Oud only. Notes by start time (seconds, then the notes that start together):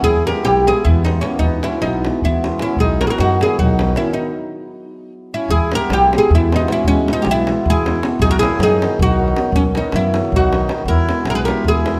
0.04 G#4
0.27 A#4
0.45 G4
0.68 G#4
0.85 E4
1.05 D#4
1.21 C#4
1.39 D#4
1.64 E4
1.82 D#4
2.25 E4
2.62 E4
2.80 G#4
3.01 A#4
3.07 G#4 A#4
3.20 F#4
3.42 G#4
3.59 F#4
3.97 E4
4.13 D#4
5.34 E4
5.50 G#4
5.75 A#4
5.93 G4
6.18 G#4
6.35 E4
6.56 D#4
6.72 E4
6.88 C#4
7.13 D#4
7.22 G4
7.31 E4
7.70 G#4
8.22 G#4
8.31 A#4
8.39 G#4
8.63 G#4
9.02 F#4
9.56 C#4
9.77 D#4
9.96 E4
10.36 F#4
10.88 A#4
11.30 A#4
11.35 B4
11.45 A#4
11.68 G#4